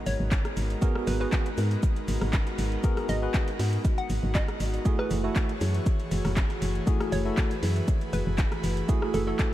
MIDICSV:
0, 0, Header, 1, 7, 480
1, 0, Start_track
1, 0, Tempo, 504202
1, 782, Time_signature, 4, 2, 24, 8
1, 9080, End_track
2, 0, Start_track
2, 0, Title_t, "Synth pluck"
2, 0, Program_c, 0, 84
2, 62, Note_on_c, 0, 73, 96
2, 208, Note_off_c, 0, 73, 0
2, 1021, Note_on_c, 0, 71, 91
2, 1103, Note_off_c, 0, 71, 0
2, 1150, Note_on_c, 0, 71, 79
2, 1222, Note_off_c, 0, 71, 0
2, 2941, Note_on_c, 0, 75, 88
2, 3087, Note_off_c, 0, 75, 0
2, 3789, Note_on_c, 0, 78, 92
2, 3923, Note_off_c, 0, 78, 0
2, 4142, Note_on_c, 0, 75, 89
2, 4621, Note_off_c, 0, 75, 0
2, 4749, Note_on_c, 0, 71, 91
2, 5102, Note_off_c, 0, 71, 0
2, 6780, Note_on_c, 0, 73, 91
2, 6927, Note_off_c, 0, 73, 0
2, 7741, Note_on_c, 0, 71, 91
2, 7887, Note_off_c, 0, 71, 0
2, 8701, Note_on_c, 0, 69, 90
2, 8783, Note_off_c, 0, 69, 0
2, 8828, Note_on_c, 0, 69, 81
2, 8901, Note_off_c, 0, 69, 0
2, 9080, End_track
3, 0, Start_track
3, 0, Title_t, "Tine electric piano"
3, 0, Program_c, 1, 4
3, 777, Note_on_c, 1, 59, 88
3, 780, Note_on_c, 1, 66, 82
3, 783, Note_on_c, 1, 68, 85
3, 786, Note_on_c, 1, 70, 97
3, 1116, Note_off_c, 1, 59, 0
3, 1117, Note_off_c, 1, 66, 0
3, 1119, Note_off_c, 1, 68, 0
3, 1121, Note_off_c, 1, 70, 0
3, 1144, Note_on_c, 1, 59, 88
3, 1147, Note_on_c, 1, 66, 80
3, 1150, Note_on_c, 1, 68, 74
3, 1153, Note_on_c, 1, 71, 93
3, 1402, Note_off_c, 1, 59, 0
3, 1404, Note_off_c, 1, 66, 0
3, 1405, Note_off_c, 1, 68, 0
3, 1407, Note_off_c, 1, 71, 0
3, 2697, Note_on_c, 1, 59, 90
3, 2700, Note_on_c, 1, 66, 82
3, 2703, Note_on_c, 1, 68, 84
3, 2706, Note_on_c, 1, 70, 103
3, 3036, Note_off_c, 1, 59, 0
3, 3037, Note_off_c, 1, 66, 0
3, 3039, Note_off_c, 1, 68, 0
3, 3040, Note_off_c, 1, 70, 0
3, 3065, Note_on_c, 1, 59, 84
3, 3068, Note_on_c, 1, 66, 78
3, 3071, Note_on_c, 1, 68, 80
3, 3074, Note_on_c, 1, 71, 98
3, 3323, Note_off_c, 1, 59, 0
3, 3324, Note_off_c, 1, 66, 0
3, 3326, Note_off_c, 1, 68, 0
3, 3327, Note_off_c, 1, 71, 0
3, 4617, Note_on_c, 1, 57, 93
3, 4620, Note_on_c, 1, 64, 83
3, 4623, Note_on_c, 1, 66, 79
3, 4626, Note_on_c, 1, 68, 98
3, 4956, Note_off_c, 1, 57, 0
3, 4957, Note_off_c, 1, 64, 0
3, 4959, Note_off_c, 1, 66, 0
3, 4960, Note_off_c, 1, 68, 0
3, 4984, Note_on_c, 1, 57, 83
3, 4987, Note_on_c, 1, 64, 78
3, 4990, Note_on_c, 1, 66, 80
3, 4993, Note_on_c, 1, 69, 92
3, 5242, Note_off_c, 1, 57, 0
3, 5244, Note_off_c, 1, 64, 0
3, 5245, Note_off_c, 1, 66, 0
3, 5247, Note_off_c, 1, 69, 0
3, 6536, Note_on_c, 1, 57, 89
3, 6539, Note_on_c, 1, 64, 81
3, 6542, Note_on_c, 1, 66, 78
3, 6545, Note_on_c, 1, 68, 97
3, 6875, Note_off_c, 1, 57, 0
3, 6877, Note_off_c, 1, 64, 0
3, 6879, Note_off_c, 1, 66, 0
3, 6880, Note_off_c, 1, 68, 0
3, 6903, Note_on_c, 1, 57, 81
3, 6906, Note_on_c, 1, 64, 77
3, 6910, Note_on_c, 1, 66, 78
3, 6913, Note_on_c, 1, 69, 95
3, 7162, Note_off_c, 1, 57, 0
3, 7163, Note_off_c, 1, 64, 0
3, 7165, Note_off_c, 1, 66, 0
3, 7167, Note_off_c, 1, 69, 0
3, 8457, Note_on_c, 1, 57, 88
3, 8460, Note_on_c, 1, 64, 81
3, 8463, Note_on_c, 1, 66, 84
3, 8467, Note_on_c, 1, 68, 100
3, 8796, Note_off_c, 1, 57, 0
3, 8797, Note_off_c, 1, 64, 0
3, 8799, Note_off_c, 1, 66, 0
3, 8801, Note_off_c, 1, 68, 0
3, 8824, Note_on_c, 1, 57, 89
3, 8827, Note_on_c, 1, 64, 78
3, 8831, Note_on_c, 1, 66, 78
3, 8834, Note_on_c, 1, 69, 94
3, 9080, Note_off_c, 1, 57, 0
3, 9080, Note_off_c, 1, 64, 0
3, 9080, Note_off_c, 1, 66, 0
3, 9080, Note_off_c, 1, 69, 0
3, 9080, End_track
4, 0, Start_track
4, 0, Title_t, "Analog synth pad"
4, 0, Program_c, 2, 89
4, 0, Note_on_c, 2, 56, 82
4, 0, Note_on_c, 2, 59, 96
4, 0, Note_on_c, 2, 63, 76
4, 0, Note_on_c, 2, 66, 81
4, 0, Note_on_c, 2, 70, 75
4, 4583, Note_off_c, 2, 56, 0
4, 4583, Note_off_c, 2, 59, 0
4, 4583, Note_off_c, 2, 63, 0
4, 4583, Note_off_c, 2, 70, 0
4, 4621, Note_on_c, 2, 52, 77
4, 4621, Note_on_c, 2, 57, 82
4, 4621, Note_on_c, 2, 73, 89
4, 4622, Note_on_c, 2, 68, 78
4, 6522, Note_off_c, 2, 73, 0
4, 6540, Note_on_c, 2, 71, 93
4, 9080, Note_off_c, 2, 52, 0
4, 9080, Note_off_c, 2, 57, 0
4, 9080, Note_off_c, 2, 66, 0
4, 9080, Note_off_c, 2, 68, 0
4, 9080, Note_off_c, 2, 71, 0
4, 9080, End_track
5, 0, Start_track
5, 0, Title_t, "FM bass"
5, 0, Program_c, 3, 39
5, 61, Note_on_c, 3, 32, 88
5, 152, Note_off_c, 3, 32, 0
5, 188, Note_on_c, 3, 32, 90
5, 356, Note_off_c, 3, 32, 0
5, 541, Note_on_c, 3, 32, 83
5, 717, Note_off_c, 3, 32, 0
5, 1021, Note_on_c, 3, 32, 100
5, 1198, Note_off_c, 3, 32, 0
5, 1501, Note_on_c, 3, 44, 99
5, 1677, Note_off_c, 3, 44, 0
5, 1981, Note_on_c, 3, 32, 89
5, 2072, Note_off_c, 3, 32, 0
5, 2108, Note_on_c, 3, 32, 94
5, 2277, Note_off_c, 3, 32, 0
5, 2461, Note_on_c, 3, 32, 84
5, 2637, Note_off_c, 3, 32, 0
5, 2941, Note_on_c, 3, 32, 97
5, 3118, Note_off_c, 3, 32, 0
5, 3421, Note_on_c, 3, 44, 100
5, 3598, Note_off_c, 3, 44, 0
5, 3901, Note_on_c, 3, 32, 86
5, 3992, Note_off_c, 3, 32, 0
5, 4028, Note_on_c, 3, 32, 95
5, 4197, Note_off_c, 3, 32, 0
5, 4381, Note_on_c, 3, 32, 82
5, 4557, Note_off_c, 3, 32, 0
5, 4861, Note_on_c, 3, 30, 95
5, 5038, Note_off_c, 3, 30, 0
5, 5341, Note_on_c, 3, 42, 106
5, 5518, Note_off_c, 3, 42, 0
5, 5821, Note_on_c, 3, 30, 97
5, 5913, Note_off_c, 3, 30, 0
5, 5949, Note_on_c, 3, 30, 102
5, 6117, Note_off_c, 3, 30, 0
5, 6301, Note_on_c, 3, 30, 90
5, 6477, Note_off_c, 3, 30, 0
5, 6781, Note_on_c, 3, 30, 99
5, 6957, Note_off_c, 3, 30, 0
5, 7261, Note_on_c, 3, 42, 100
5, 7437, Note_off_c, 3, 42, 0
5, 7741, Note_on_c, 3, 30, 87
5, 7832, Note_off_c, 3, 30, 0
5, 7869, Note_on_c, 3, 30, 95
5, 8037, Note_off_c, 3, 30, 0
5, 8221, Note_on_c, 3, 30, 84
5, 8398, Note_off_c, 3, 30, 0
5, 8702, Note_on_c, 3, 30, 96
5, 8878, Note_off_c, 3, 30, 0
5, 9080, End_track
6, 0, Start_track
6, 0, Title_t, "Impact"
6, 0, Program_c, 4, 103
6, 0, Note_on_c, 4, 60, 80
6, 781, Note_off_c, 4, 60, 0
6, 9080, End_track
7, 0, Start_track
7, 0, Title_t, "Drums"
7, 61, Note_on_c, 9, 46, 102
7, 61, Note_on_c, 9, 82, 70
7, 156, Note_off_c, 9, 46, 0
7, 156, Note_off_c, 9, 82, 0
7, 301, Note_on_c, 9, 36, 121
7, 301, Note_on_c, 9, 38, 118
7, 301, Note_on_c, 9, 39, 123
7, 301, Note_on_c, 9, 42, 81
7, 301, Note_on_c, 9, 82, 91
7, 396, Note_off_c, 9, 36, 0
7, 396, Note_off_c, 9, 38, 0
7, 396, Note_off_c, 9, 39, 0
7, 396, Note_off_c, 9, 42, 0
7, 396, Note_off_c, 9, 82, 0
7, 428, Note_on_c, 9, 37, 66
7, 428, Note_on_c, 9, 42, 41
7, 524, Note_off_c, 9, 37, 0
7, 524, Note_off_c, 9, 42, 0
7, 541, Note_on_c, 9, 46, 110
7, 541, Note_on_c, 9, 82, 71
7, 636, Note_off_c, 9, 46, 0
7, 636, Note_off_c, 9, 82, 0
7, 669, Note_on_c, 9, 42, 40
7, 764, Note_off_c, 9, 42, 0
7, 781, Note_on_c, 9, 36, 127
7, 781, Note_on_c, 9, 42, 86
7, 781, Note_on_c, 9, 82, 84
7, 876, Note_off_c, 9, 36, 0
7, 876, Note_off_c, 9, 42, 0
7, 876, Note_off_c, 9, 82, 0
7, 909, Note_on_c, 9, 37, 78
7, 1004, Note_off_c, 9, 37, 0
7, 1021, Note_on_c, 9, 46, 109
7, 1021, Note_on_c, 9, 82, 69
7, 1116, Note_off_c, 9, 82, 0
7, 1117, Note_off_c, 9, 46, 0
7, 1261, Note_on_c, 9, 36, 119
7, 1261, Note_on_c, 9, 38, 116
7, 1261, Note_on_c, 9, 82, 86
7, 1262, Note_on_c, 9, 39, 123
7, 1262, Note_on_c, 9, 42, 78
7, 1356, Note_off_c, 9, 36, 0
7, 1356, Note_off_c, 9, 38, 0
7, 1356, Note_off_c, 9, 82, 0
7, 1357, Note_off_c, 9, 39, 0
7, 1357, Note_off_c, 9, 42, 0
7, 1389, Note_on_c, 9, 42, 53
7, 1484, Note_off_c, 9, 42, 0
7, 1501, Note_on_c, 9, 46, 107
7, 1501, Note_on_c, 9, 82, 74
7, 1596, Note_off_c, 9, 82, 0
7, 1597, Note_off_c, 9, 46, 0
7, 1628, Note_on_c, 9, 42, 52
7, 1724, Note_off_c, 9, 42, 0
7, 1741, Note_on_c, 9, 36, 122
7, 1741, Note_on_c, 9, 42, 85
7, 1741, Note_on_c, 9, 82, 86
7, 1836, Note_off_c, 9, 36, 0
7, 1837, Note_off_c, 9, 42, 0
7, 1837, Note_off_c, 9, 82, 0
7, 1869, Note_on_c, 9, 42, 37
7, 1964, Note_off_c, 9, 42, 0
7, 1981, Note_on_c, 9, 46, 107
7, 1981, Note_on_c, 9, 82, 69
7, 2077, Note_off_c, 9, 46, 0
7, 2077, Note_off_c, 9, 82, 0
7, 2109, Note_on_c, 9, 37, 78
7, 2109, Note_on_c, 9, 46, 64
7, 2204, Note_off_c, 9, 37, 0
7, 2204, Note_off_c, 9, 46, 0
7, 2221, Note_on_c, 9, 36, 125
7, 2221, Note_on_c, 9, 39, 125
7, 2221, Note_on_c, 9, 42, 82
7, 2222, Note_on_c, 9, 38, 123
7, 2222, Note_on_c, 9, 82, 90
7, 2316, Note_off_c, 9, 36, 0
7, 2316, Note_off_c, 9, 42, 0
7, 2317, Note_off_c, 9, 38, 0
7, 2317, Note_off_c, 9, 39, 0
7, 2317, Note_off_c, 9, 82, 0
7, 2349, Note_on_c, 9, 38, 52
7, 2349, Note_on_c, 9, 42, 39
7, 2444, Note_off_c, 9, 38, 0
7, 2444, Note_off_c, 9, 42, 0
7, 2461, Note_on_c, 9, 46, 112
7, 2461, Note_on_c, 9, 82, 73
7, 2556, Note_off_c, 9, 46, 0
7, 2557, Note_off_c, 9, 82, 0
7, 2589, Note_on_c, 9, 42, 38
7, 2684, Note_off_c, 9, 42, 0
7, 2701, Note_on_c, 9, 36, 127
7, 2701, Note_on_c, 9, 82, 93
7, 2702, Note_on_c, 9, 42, 79
7, 2796, Note_off_c, 9, 36, 0
7, 2797, Note_off_c, 9, 42, 0
7, 2797, Note_off_c, 9, 82, 0
7, 2829, Note_on_c, 9, 37, 75
7, 2829, Note_on_c, 9, 42, 42
7, 2924, Note_off_c, 9, 37, 0
7, 2924, Note_off_c, 9, 42, 0
7, 2942, Note_on_c, 9, 46, 113
7, 2942, Note_on_c, 9, 82, 69
7, 3037, Note_off_c, 9, 46, 0
7, 3037, Note_off_c, 9, 82, 0
7, 3181, Note_on_c, 9, 36, 125
7, 3182, Note_on_c, 9, 38, 119
7, 3182, Note_on_c, 9, 39, 127
7, 3182, Note_on_c, 9, 42, 81
7, 3182, Note_on_c, 9, 82, 89
7, 3276, Note_off_c, 9, 36, 0
7, 3277, Note_off_c, 9, 38, 0
7, 3277, Note_off_c, 9, 39, 0
7, 3277, Note_off_c, 9, 42, 0
7, 3277, Note_off_c, 9, 82, 0
7, 3309, Note_on_c, 9, 42, 53
7, 3405, Note_off_c, 9, 42, 0
7, 3422, Note_on_c, 9, 46, 85
7, 3517, Note_off_c, 9, 46, 0
7, 3549, Note_on_c, 9, 42, 51
7, 3644, Note_off_c, 9, 42, 0
7, 3661, Note_on_c, 9, 36, 127
7, 3662, Note_on_c, 9, 42, 80
7, 3662, Note_on_c, 9, 82, 85
7, 3756, Note_off_c, 9, 36, 0
7, 3757, Note_off_c, 9, 42, 0
7, 3757, Note_off_c, 9, 82, 0
7, 3789, Note_on_c, 9, 42, 38
7, 3884, Note_off_c, 9, 42, 0
7, 3901, Note_on_c, 9, 46, 105
7, 3901, Note_on_c, 9, 82, 69
7, 3996, Note_off_c, 9, 46, 0
7, 3996, Note_off_c, 9, 82, 0
7, 4141, Note_on_c, 9, 36, 126
7, 4141, Note_on_c, 9, 38, 120
7, 4141, Note_on_c, 9, 82, 90
7, 4142, Note_on_c, 9, 39, 122
7, 4142, Note_on_c, 9, 42, 75
7, 4236, Note_off_c, 9, 36, 0
7, 4237, Note_off_c, 9, 38, 0
7, 4237, Note_off_c, 9, 39, 0
7, 4237, Note_off_c, 9, 42, 0
7, 4237, Note_off_c, 9, 82, 0
7, 4269, Note_on_c, 9, 37, 64
7, 4269, Note_on_c, 9, 42, 37
7, 4364, Note_off_c, 9, 37, 0
7, 4364, Note_off_c, 9, 42, 0
7, 4382, Note_on_c, 9, 46, 116
7, 4382, Note_on_c, 9, 82, 71
7, 4477, Note_off_c, 9, 46, 0
7, 4477, Note_off_c, 9, 82, 0
7, 4509, Note_on_c, 9, 42, 46
7, 4605, Note_off_c, 9, 42, 0
7, 4621, Note_on_c, 9, 36, 127
7, 4621, Note_on_c, 9, 82, 86
7, 4622, Note_on_c, 9, 42, 77
7, 4716, Note_off_c, 9, 36, 0
7, 4717, Note_off_c, 9, 42, 0
7, 4717, Note_off_c, 9, 82, 0
7, 4749, Note_on_c, 9, 37, 80
7, 4844, Note_off_c, 9, 37, 0
7, 4862, Note_on_c, 9, 46, 110
7, 4862, Note_on_c, 9, 82, 69
7, 4957, Note_off_c, 9, 46, 0
7, 4957, Note_off_c, 9, 82, 0
7, 5101, Note_on_c, 9, 36, 121
7, 5101, Note_on_c, 9, 38, 114
7, 5101, Note_on_c, 9, 42, 77
7, 5101, Note_on_c, 9, 82, 88
7, 5102, Note_on_c, 9, 39, 123
7, 5196, Note_off_c, 9, 36, 0
7, 5197, Note_off_c, 9, 38, 0
7, 5197, Note_off_c, 9, 39, 0
7, 5197, Note_off_c, 9, 42, 0
7, 5197, Note_off_c, 9, 82, 0
7, 5229, Note_on_c, 9, 42, 53
7, 5324, Note_off_c, 9, 42, 0
7, 5341, Note_on_c, 9, 46, 112
7, 5342, Note_on_c, 9, 82, 73
7, 5436, Note_off_c, 9, 46, 0
7, 5437, Note_off_c, 9, 82, 0
7, 5469, Note_on_c, 9, 42, 52
7, 5564, Note_off_c, 9, 42, 0
7, 5581, Note_on_c, 9, 36, 126
7, 5581, Note_on_c, 9, 42, 80
7, 5581, Note_on_c, 9, 82, 89
7, 5676, Note_off_c, 9, 36, 0
7, 5676, Note_off_c, 9, 82, 0
7, 5677, Note_off_c, 9, 42, 0
7, 5708, Note_on_c, 9, 42, 37
7, 5804, Note_off_c, 9, 42, 0
7, 5821, Note_on_c, 9, 46, 107
7, 5821, Note_on_c, 9, 82, 69
7, 5916, Note_off_c, 9, 46, 0
7, 5916, Note_off_c, 9, 82, 0
7, 5948, Note_on_c, 9, 37, 77
7, 5948, Note_on_c, 9, 46, 68
7, 6043, Note_off_c, 9, 37, 0
7, 6043, Note_off_c, 9, 46, 0
7, 6061, Note_on_c, 9, 36, 123
7, 6061, Note_on_c, 9, 38, 118
7, 6061, Note_on_c, 9, 39, 113
7, 6061, Note_on_c, 9, 42, 75
7, 6061, Note_on_c, 9, 82, 96
7, 6156, Note_off_c, 9, 36, 0
7, 6156, Note_off_c, 9, 39, 0
7, 6156, Note_off_c, 9, 42, 0
7, 6157, Note_off_c, 9, 38, 0
7, 6157, Note_off_c, 9, 82, 0
7, 6188, Note_on_c, 9, 42, 36
7, 6189, Note_on_c, 9, 38, 51
7, 6284, Note_off_c, 9, 38, 0
7, 6284, Note_off_c, 9, 42, 0
7, 6301, Note_on_c, 9, 46, 114
7, 6302, Note_on_c, 9, 82, 67
7, 6396, Note_off_c, 9, 46, 0
7, 6397, Note_off_c, 9, 82, 0
7, 6429, Note_on_c, 9, 42, 34
7, 6524, Note_off_c, 9, 42, 0
7, 6541, Note_on_c, 9, 36, 125
7, 6541, Note_on_c, 9, 42, 80
7, 6542, Note_on_c, 9, 82, 89
7, 6636, Note_off_c, 9, 36, 0
7, 6636, Note_off_c, 9, 42, 0
7, 6637, Note_off_c, 9, 82, 0
7, 6668, Note_on_c, 9, 37, 85
7, 6669, Note_on_c, 9, 42, 44
7, 6763, Note_off_c, 9, 37, 0
7, 6765, Note_off_c, 9, 42, 0
7, 6781, Note_on_c, 9, 46, 110
7, 6782, Note_on_c, 9, 82, 68
7, 6876, Note_off_c, 9, 46, 0
7, 6877, Note_off_c, 9, 82, 0
7, 7021, Note_on_c, 9, 36, 120
7, 7021, Note_on_c, 9, 39, 120
7, 7021, Note_on_c, 9, 42, 77
7, 7022, Note_on_c, 9, 38, 122
7, 7022, Note_on_c, 9, 82, 92
7, 7116, Note_off_c, 9, 36, 0
7, 7116, Note_off_c, 9, 39, 0
7, 7116, Note_off_c, 9, 42, 0
7, 7117, Note_off_c, 9, 38, 0
7, 7117, Note_off_c, 9, 82, 0
7, 7148, Note_on_c, 9, 42, 54
7, 7149, Note_off_c, 9, 42, 0
7, 7149, Note_on_c, 9, 42, 44
7, 7244, Note_off_c, 9, 42, 0
7, 7261, Note_on_c, 9, 46, 109
7, 7262, Note_off_c, 9, 46, 0
7, 7262, Note_on_c, 9, 46, 89
7, 7357, Note_off_c, 9, 46, 0
7, 7389, Note_on_c, 9, 42, 51
7, 7484, Note_off_c, 9, 42, 0
7, 7501, Note_on_c, 9, 36, 123
7, 7501, Note_on_c, 9, 42, 78
7, 7501, Note_on_c, 9, 82, 86
7, 7596, Note_off_c, 9, 36, 0
7, 7596, Note_off_c, 9, 42, 0
7, 7596, Note_off_c, 9, 82, 0
7, 7629, Note_on_c, 9, 42, 36
7, 7724, Note_off_c, 9, 42, 0
7, 7741, Note_on_c, 9, 46, 99
7, 7741, Note_on_c, 9, 82, 70
7, 7837, Note_off_c, 9, 46, 0
7, 7837, Note_off_c, 9, 82, 0
7, 7981, Note_on_c, 9, 36, 121
7, 7981, Note_on_c, 9, 38, 120
7, 7981, Note_on_c, 9, 39, 112
7, 7981, Note_on_c, 9, 42, 78
7, 7981, Note_on_c, 9, 82, 94
7, 8076, Note_off_c, 9, 36, 0
7, 8076, Note_off_c, 9, 38, 0
7, 8076, Note_off_c, 9, 82, 0
7, 8077, Note_off_c, 9, 39, 0
7, 8077, Note_off_c, 9, 42, 0
7, 8109, Note_on_c, 9, 37, 69
7, 8109, Note_on_c, 9, 42, 38
7, 8204, Note_off_c, 9, 37, 0
7, 8204, Note_off_c, 9, 42, 0
7, 8221, Note_on_c, 9, 82, 67
7, 8222, Note_on_c, 9, 46, 108
7, 8317, Note_off_c, 9, 46, 0
7, 8317, Note_off_c, 9, 82, 0
7, 8349, Note_on_c, 9, 42, 37
7, 8444, Note_off_c, 9, 42, 0
7, 8461, Note_on_c, 9, 36, 122
7, 8461, Note_on_c, 9, 82, 93
7, 8462, Note_on_c, 9, 42, 84
7, 8556, Note_off_c, 9, 36, 0
7, 8557, Note_off_c, 9, 42, 0
7, 8557, Note_off_c, 9, 82, 0
7, 8589, Note_on_c, 9, 37, 88
7, 8684, Note_off_c, 9, 37, 0
7, 8701, Note_on_c, 9, 82, 70
7, 8702, Note_on_c, 9, 46, 100
7, 8797, Note_off_c, 9, 46, 0
7, 8797, Note_off_c, 9, 82, 0
7, 8941, Note_on_c, 9, 36, 111
7, 8941, Note_on_c, 9, 38, 119
7, 8941, Note_on_c, 9, 82, 88
7, 8942, Note_on_c, 9, 39, 118
7, 8942, Note_on_c, 9, 42, 81
7, 9036, Note_off_c, 9, 36, 0
7, 9037, Note_off_c, 9, 38, 0
7, 9037, Note_off_c, 9, 39, 0
7, 9037, Note_off_c, 9, 42, 0
7, 9037, Note_off_c, 9, 82, 0
7, 9080, End_track
0, 0, End_of_file